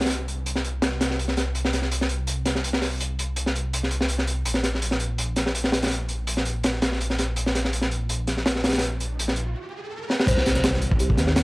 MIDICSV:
0, 0, Header, 1, 7, 480
1, 0, Start_track
1, 0, Key_signature, -3, "minor"
1, 0, Tempo, 363636
1, 124, Time_signature, 4, 2, 24, 8
1, 15088, End_track
2, 0, Start_track
2, 0, Title_t, "Kalimba"
2, 0, Program_c, 0, 108
2, 13560, Note_on_c, 0, 72, 91
2, 13853, Note_off_c, 0, 72, 0
2, 14524, Note_on_c, 0, 67, 90
2, 14814, Note_off_c, 0, 67, 0
2, 15088, End_track
3, 0, Start_track
3, 0, Title_t, "Detuned saw bass"
3, 0, Program_c, 1, 39
3, 0, Note_on_c, 1, 36, 84
3, 5861, Note_off_c, 1, 36, 0
3, 5881, Note_on_c, 1, 34, 88
3, 12603, Note_off_c, 1, 34, 0
3, 13559, Note_on_c, 1, 36, 95
3, 14743, Note_off_c, 1, 36, 0
3, 14762, Note_on_c, 1, 39, 91
3, 15088, Note_off_c, 1, 39, 0
3, 15088, End_track
4, 0, Start_track
4, 0, Title_t, "Downlifter"
4, 0, Program_c, 2, 103
4, 0, Note_on_c, 2, 60, 73
4, 2045, Note_off_c, 2, 60, 0
4, 15088, End_track
5, 0, Start_track
5, 0, Title_t, "Impact"
5, 0, Program_c, 3, 103
5, 13564, Note_on_c, 3, 60, 80
5, 15088, Note_off_c, 3, 60, 0
5, 15088, End_track
6, 0, Start_track
6, 0, Title_t, "Riser"
6, 0, Program_c, 4, 103
6, 9724, Note_on_c, 4, 60, 73
6, 13564, Note_off_c, 4, 60, 0
6, 15088, End_track
7, 0, Start_track
7, 0, Title_t, "Drums"
7, 8, Note_on_c, 9, 38, 89
7, 11, Note_on_c, 9, 42, 62
7, 74, Note_off_c, 9, 38, 0
7, 74, Note_on_c, 9, 38, 86
7, 78, Note_off_c, 9, 42, 0
7, 78, Note_on_c, 9, 42, 62
7, 130, Note_off_c, 9, 42, 0
7, 130, Note_on_c, 9, 42, 83
7, 206, Note_off_c, 9, 38, 0
7, 262, Note_off_c, 9, 42, 0
7, 370, Note_on_c, 9, 42, 62
7, 502, Note_off_c, 9, 42, 0
7, 608, Note_on_c, 9, 42, 76
7, 732, Note_on_c, 9, 38, 41
7, 740, Note_off_c, 9, 42, 0
7, 850, Note_on_c, 9, 42, 59
7, 864, Note_off_c, 9, 38, 0
7, 982, Note_off_c, 9, 42, 0
7, 1085, Note_on_c, 9, 38, 111
7, 1086, Note_on_c, 9, 42, 69
7, 1203, Note_off_c, 9, 38, 0
7, 1203, Note_on_c, 9, 38, 36
7, 1218, Note_off_c, 9, 42, 0
7, 1330, Note_off_c, 9, 38, 0
7, 1330, Note_on_c, 9, 38, 98
7, 1331, Note_on_c, 9, 42, 68
7, 1455, Note_off_c, 9, 38, 0
7, 1455, Note_on_c, 9, 38, 52
7, 1463, Note_off_c, 9, 42, 0
7, 1574, Note_on_c, 9, 42, 81
7, 1587, Note_off_c, 9, 38, 0
7, 1688, Note_on_c, 9, 38, 45
7, 1706, Note_off_c, 9, 42, 0
7, 1805, Note_on_c, 9, 42, 61
7, 1810, Note_off_c, 9, 38, 0
7, 1810, Note_on_c, 9, 38, 48
7, 1937, Note_off_c, 9, 42, 0
7, 1942, Note_off_c, 9, 38, 0
7, 2043, Note_on_c, 9, 42, 78
7, 2171, Note_on_c, 9, 38, 50
7, 2175, Note_off_c, 9, 42, 0
7, 2282, Note_on_c, 9, 42, 68
7, 2287, Note_off_c, 9, 38, 0
7, 2287, Note_on_c, 9, 38, 46
7, 2400, Note_off_c, 9, 38, 0
7, 2400, Note_on_c, 9, 38, 36
7, 2414, Note_off_c, 9, 42, 0
7, 2525, Note_on_c, 9, 42, 86
7, 2532, Note_off_c, 9, 38, 0
7, 2656, Note_on_c, 9, 38, 48
7, 2657, Note_off_c, 9, 42, 0
7, 2758, Note_on_c, 9, 42, 65
7, 2788, Note_off_c, 9, 38, 0
7, 2890, Note_off_c, 9, 42, 0
7, 2998, Note_on_c, 9, 42, 81
7, 3130, Note_off_c, 9, 42, 0
7, 3241, Note_on_c, 9, 42, 67
7, 3242, Note_on_c, 9, 38, 52
7, 3370, Note_off_c, 9, 38, 0
7, 3370, Note_on_c, 9, 38, 46
7, 3373, Note_off_c, 9, 42, 0
7, 3487, Note_on_c, 9, 42, 87
7, 3502, Note_off_c, 9, 38, 0
7, 3607, Note_on_c, 9, 38, 52
7, 3619, Note_off_c, 9, 42, 0
7, 3715, Note_off_c, 9, 38, 0
7, 3715, Note_on_c, 9, 38, 46
7, 3717, Note_on_c, 9, 46, 81
7, 3847, Note_off_c, 9, 38, 0
7, 3849, Note_off_c, 9, 46, 0
7, 3964, Note_on_c, 9, 42, 85
7, 4096, Note_off_c, 9, 42, 0
7, 4208, Note_on_c, 9, 42, 71
7, 4340, Note_off_c, 9, 42, 0
7, 4437, Note_on_c, 9, 42, 83
7, 4569, Note_off_c, 9, 42, 0
7, 4570, Note_on_c, 9, 38, 46
7, 4691, Note_on_c, 9, 42, 70
7, 4702, Note_off_c, 9, 38, 0
7, 4823, Note_off_c, 9, 42, 0
7, 4928, Note_on_c, 9, 42, 96
7, 5059, Note_on_c, 9, 38, 35
7, 5060, Note_off_c, 9, 42, 0
7, 5157, Note_on_c, 9, 42, 71
7, 5191, Note_off_c, 9, 38, 0
7, 5288, Note_on_c, 9, 38, 51
7, 5289, Note_off_c, 9, 42, 0
7, 5392, Note_on_c, 9, 42, 84
7, 5420, Note_off_c, 9, 38, 0
7, 5522, Note_on_c, 9, 38, 43
7, 5524, Note_off_c, 9, 42, 0
7, 5640, Note_on_c, 9, 42, 68
7, 5654, Note_off_c, 9, 38, 0
7, 5772, Note_off_c, 9, 42, 0
7, 5880, Note_on_c, 9, 42, 92
7, 5994, Note_on_c, 9, 38, 49
7, 6012, Note_off_c, 9, 42, 0
7, 6115, Note_off_c, 9, 38, 0
7, 6115, Note_on_c, 9, 38, 49
7, 6121, Note_on_c, 9, 42, 67
7, 6247, Note_off_c, 9, 38, 0
7, 6253, Note_off_c, 9, 42, 0
7, 6262, Note_on_c, 9, 38, 37
7, 6361, Note_on_c, 9, 42, 86
7, 6394, Note_off_c, 9, 38, 0
7, 6482, Note_on_c, 9, 38, 47
7, 6493, Note_off_c, 9, 42, 0
7, 6596, Note_on_c, 9, 42, 62
7, 6614, Note_off_c, 9, 38, 0
7, 6728, Note_off_c, 9, 42, 0
7, 6841, Note_on_c, 9, 42, 89
7, 6973, Note_off_c, 9, 42, 0
7, 7074, Note_on_c, 9, 42, 62
7, 7080, Note_on_c, 9, 38, 49
7, 7206, Note_off_c, 9, 42, 0
7, 7207, Note_off_c, 9, 38, 0
7, 7207, Note_on_c, 9, 38, 45
7, 7322, Note_on_c, 9, 42, 89
7, 7339, Note_off_c, 9, 38, 0
7, 7443, Note_on_c, 9, 38, 51
7, 7454, Note_off_c, 9, 42, 0
7, 7554, Note_off_c, 9, 38, 0
7, 7554, Note_on_c, 9, 38, 88
7, 7568, Note_on_c, 9, 42, 78
7, 7686, Note_off_c, 9, 38, 0
7, 7689, Note_off_c, 9, 42, 0
7, 7689, Note_on_c, 9, 42, 67
7, 7696, Note_on_c, 9, 38, 84
7, 7740, Note_off_c, 9, 38, 0
7, 7740, Note_on_c, 9, 38, 81
7, 7742, Note_off_c, 9, 42, 0
7, 7742, Note_on_c, 9, 42, 72
7, 7804, Note_off_c, 9, 42, 0
7, 7804, Note_on_c, 9, 42, 92
7, 7872, Note_off_c, 9, 38, 0
7, 7936, Note_off_c, 9, 42, 0
7, 8033, Note_on_c, 9, 42, 62
7, 8165, Note_off_c, 9, 42, 0
7, 8278, Note_on_c, 9, 42, 83
7, 8408, Note_on_c, 9, 38, 47
7, 8410, Note_off_c, 9, 42, 0
7, 8518, Note_on_c, 9, 42, 68
7, 8540, Note_off_c, 9, 38, 0
7, 8650, Note_off_c, 9, 42, 0
7, 8758, Note_on_c, 9, 42, 85
7, 8768, Note_on_c, 9, 38, 92
7, 8886, Note_off_c, 9, 38, 0
7, 8886, Note_on_c, 9, 38, 38
7, 8890, Note_off_c, 9, 42, 0
7, 8999, Note_on_c, 9, 42, 70
7, 9004, Note_off_c, 9, 38, 0
7, 9004, Note_on_c, 9, 38, 103
7, 9131, Note_off_c, 9, 42, 0
7, 9132, Note_off_c, 9, 38, 0
7, 9132, Note_on_c, 9, 38, 47
7, 9247, Note_on_c, 9, 42, 83
7, 9264, Note_off_c, 9, 38, 0
7, 9370, Note_on_c, 9, 38, 46
7, 9379, Note_off_c, 9, 42, 0
7, 9482, Note_on_c, 9, 42, 72
7, 9490, Note_off_c, 9, 38, 0
7, 9490, Note_on_c, 9, 38, 46
7, 9614, Note_off_c, 9, 42, 0
7, 9622, Note_off_c, 9, 38, 0
7, 9717, Note_on_c, 9, 42, 95
7, 9849, Note_off_c, 9, 42, 0
7, 9852, Note_on_c, 9, 38, 55
7, 9965, Note_off_c, 9, 38, 0
7, 9965, Note_on_c, 9, 38, 47
7, 9968, Note_on_c, 9, 42, 69
7, 10091, Note_off_c, 9, 38, 0
7, 10091, Note_on_c, 9, 38, 44
7, 10100, Note_off_c, 9, 42, 0
7, 10202, Note_on_c, 9, 42, 89
7, 10223, Note_off_c, 9, 38, 0
7, 10316, Note_on_c, 9, 38, 48
7, 10334, Note_off_c, 9, 42, 0
7, 10446, Note_on_c, 9, 42, 63
7, 10448, Note_off_c, 9, 38, 0
7, 10578, Note_off_c, 9, 42, 0
7, 10683, Note_on_c, 9, 42, 86
7, 10815, Note_off_c, 9, 42, 0
7, 10919, Note_on_c, 9, 42, 53
7, 10923, Note_on_c, 9, 38, 36
7, 11049, Note_off_c, 9, 38, 0
7, 11049, Note_on_c, 9, 38, 33
7, 11051, Note_off_c, 9, 42, 0
7, 11163, Note_off_c, 9, 38, 0
7, 11163, Note_on_c, 9, 38, 98
7, 11169, Note_on_c, 9, 42, 77
7, 11290, Note_off_c, 9, 38, 0
7, 11290, Note_on_c, 9, 38, 49
7, 11301, Note_off_c, 9, 42, 0
7, 11402, Note_off_c, 9, 38, 0
7, 11402, Note_on_c, 9, 38, 88
7, 11405, Note_on_c, 9, 42, 67
7, 11463, Note_off_c, 9, 38, 0
7, 11463, Note_on_c, 9, 38, 85
7, 11475, Note_off_c, 9, 42, 0
7, 11475, Note_on_c, 9, 42, 57
7, 11516, Note_off_c, 9, 42, 0
7, 11516, Note_on_c, 9, 42, 67
7, 11522, Note_off_c, 9, 38, 0
7, 11522, Note_on_c, 9, 38, 85
7, 11590, Note_off_c, 9, 38, 0
7, 11590, Note_on_c, 9, 38, 87
7, 11599, Note_off_c, 9, 42, 0
7, 11599, Note_on_c, 9, 42, 65
7, 11641, Note_off_c, 9, 42, 0
7, 11641, Note_on_c, 9, 42, 87
7, 11722, Note_off_c, 9, 38, 0
7, 11773, Note_off_c, 9, 42, 0
7, 11882, Note_on_c, 9, 42, 68
7, 12014, Note_off_c, 9, 42, 0
7, 12134, Note_on_c, 9, 42, 90
7, 12250, Note_on_c, 9, 38, 47
7, 12266, Note_off_c, 9, 42, 0
7, 12354, Note_on_c, 9, 42, 59
7, 12382, Note_off_c, 9, 38, 0
7, 12486, Note_off_c, 9, 42, 0
7, 13330, Note_on_c, 9, 38, 51
7, 13458, Note_off_c, 9, 38, 0
7, 13458, Note_on_c, 9, 38, 71
7, 13558, Note_on_c, 9, 36, 113
7, 13561, Note_on_c, 9, 42, 86
7, 13565, Note_on_c, 9, 49, 102
7, 13565, Note_on_c, 9, 54, 90
7, 13590, Note_off_c, 9, 38, 0
7, 13690, Note_off_c, 9, 36, 0
7, 13693, Note_off_c, 9, 42, 0
7, 13693, Note_on_c, 9, 38, 51
7, 13697, Note_off_c, 9, 49, 0
7, 13697, Note_off_c, 9, 54, 0
7, 13805, Note_on_c, 9, 54, 67
7, 13807, Note_on_c, 9, 42, 75
7, 13812, Note_off_c, 9, 38, 0
7, 13812, Note_on_c, 9, 38, 50
7, 13927, Note_off_c, 9, 38, 0
7, 13927, Note_on_c, 9, 38, 40
7, 13930, Note_off_c, 9, 42, 0
7, 13930, Note_on_c, 9, 42, 45
7, 13937, Note_off_c, 9, 54, 0
7, 14041, Note_off_c, 9, 38, 0
7, 14041, Note_on_c, 9, 38, 116
7, 14041, Note_on_c, 9, 54, 90
7, 14043, Note_off_c, 9, 38, 0
7, 14043, Note_on_c, 9, 38, 107
7, 14050, Note_off_c, 9, 42, 0
7, 14050, Note_on_c, 9, 42, 87
7, 14167, Note_off_c, 9, 38, 0
7, 14167, Note_on_c, 9, 38, 51
7, 14168, Note_off_c, 9, 38, 0
7, 14168, Note_on_c, 9, 38, 55
7, 14173, Note_off_c, 9, 54, 0
7, 14182, Note_off_c, 9, 42, 0
7, 14276, Note_on_c, 9, 42, 67
7, 14282, Note_on_c, 9, 54, 70
7, 14300, Note_off_c, 9, 38, 0
7, 14407, Note_on_c, 9, 36, 106
7, 14408, Note_off_c, 9, 42, 0
7, 14414, Note_off_c, 9, 54, 0
7, 14508, Note_on_c, 9, 42, 91
7, 14520, Note_on_c, 9, 54, 91
7, 14539, Note_off_c, 9, 36, 0
7, 14640, Note_off_c, 9, 42, 0
7, 14651, Note_on_c, 9, 36, 94
7, 14652, Note_off_c, 9, 54, 0
7, 14750, Note_on_c, 9, 38, 54
7, 14753, Note_on_c, 9, 42, 64
7, 14762, Note_on_c, 9, 54, 74
7, 14783, Note_off_c, 9, 36, 0
7, 14878, Note_off_c, 9, 38, 0
7, 14878, Note_on_c, 9, 38, 49
7, 14885, Note_off_c, 9, 42, 0
7, 14894, Note_off_c, 9, 54, 0
7, 14995, Note_on_c, 9, 42, 86
7, 14998, Note_off_c, 9, 38, 0
7, 14998, Note_on_c, 9, 38, 123
7, 15003, Note_off_c, 9, 38, 0
7, 15003, Note_on_c, 9, 38, 121
7, 15003, Note_on_c, 9, 54, 93
7, 15088, Note_off_c, 9, 38, 0
7, 15088, Note_off_c, 9, 42, 0
7, 15088, Note_off_c, 9, 54, 0
7, 15088, End_track
0, 0, End_of_file